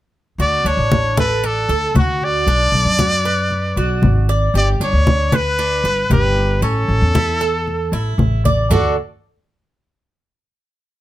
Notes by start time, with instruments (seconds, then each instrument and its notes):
0.38 upright bass D2, cuban tres F#4, trumpet D5, high conga
0.64 upright bass D2, cuban tres D4, trumpet C#5, high conga
0.77 upright bass A1
0.92 high conga
1.17 cuban tres A4, trumpet B4, high conga
1.44 cuban tres D4, trumpet A4, high conga
1.69 upright bass D2, cuban tres A4, high conga
1.95 upright bass D2, cuban tres F#4, trumpet F#4, high conga
2.21 trumpet D5, high conga
2.47 upright bass B1, cuban tres D4, high conga
2.72 upright bass B1, high conga
2.85 upright bass F#2
2.99 cuban tres F#4, high conga
3.25 cuban tres B4
3.51 high conga
3.76 upright bass B1, cuban tres F#4, high conga
4.02 upright bass G#1, high conga
4.29 cuban tres D5
4.54 upright bass G1, cuban tres G4, trumpet D5, high conga
4.80 upright bass G1, cuban tres D4, trumpet C#5, high conga
4.93 upright bass D2
5.07 high conga
5.32 cuban tres B4, trumpet B4, high conga
5.59 cuban tres D4, high conga
5.84 upright bass G1, cuban tres B4, high conga
6.10 upright bass G1, cuban tres G4, trumpet B4, high conga
6.37 high conga
6.62 upright bass A1, cuban tres C#4, trumpet A4, high conga
6.88 upright bass A1, high conga
7.01 upright bass E2
7.15 cuban tres E4, high conga
7.41 cuban tres A4
7.68 high conga
7.92 upright bass A1, cuban tres E4, high conga
8.18 upright bass A1, high conga
8.45 cuban tres D5, high conga
8.70 upright bass D2, cuban tres D4 A4 D5, trumpet F#4, low conga